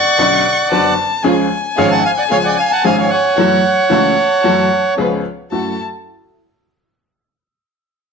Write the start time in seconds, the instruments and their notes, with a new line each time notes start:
Already playing: bandoneon D5 F#5, violin C#6
0.18 upright piano B1 B2 D3 B3 C#4 F#4, string section C#4 D4 B4
0.71 upright piano F#1 F#2 D3 B3 C#4 F#4, string section C#4 D4 B4, violin A5
1.23 upright piano C#2 C#3 F3 G#3 C#4 G#4, string section C#4 F4 G#4, violin G#5
1.77 upright piano G#1 G#2 F3 G#3 C#4 G#4, string section C#4 F4 G#4, bandoneon C#5 F5
1.91 bandoneon F#5 A5
2.05 bandoneon F5 G#5
2.17 bandoneon D5 F#5
2.30 upright piano C#2 C#3 F3 G#3 C#4 G#4, string section C#4 F4 G#4, bandoneon C#5 F5
2.44 bandoneon D5 F#5
2.58 bandoneon F5 G#5
2.71 bandoneon F#5 A5
2.84 upright piano G#1 G#2 F3 G#3 C#4 G#4, string section C#4 F4 G#4, bandoneon F5 G#5
2.98 bandoneon C#5 F5
3.10 bandoneon C#5 F#5
3.37 upright piano F#2 E3 F#3 A3 C#4 F#4, string section E4 F#4 A4, violin F#5
3.90 upright piano C#2 C#3 E3 A3 C#4 F#4, string section E4 F#4 A4, violin A5
4.44 upright piano F#2 E3 F#3 A3 C#4 F#4, string section E4 F#4 A4
4.97 upright piano C#2 C#3 F3 B3 C#4 G#4, string section C#4 F4 B4
5.51 upright piano F#2 A3 E4 F#4, string section E4 F#4 A4, violin A5